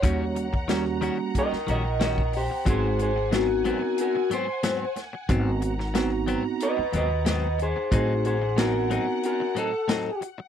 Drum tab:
HH |x-x-x-x-x-x-x-o-|x-x-x-x-x-x-x-x-|x-x-x-x-x-x-x-x-|x-x-x-x-x-x-x-x-|
SD |----o----o--o---|----o-------o-o-|---oo-------o---|----o-------o---|
BD |o--o----o----o--|o---------------|o---------------|o---------------|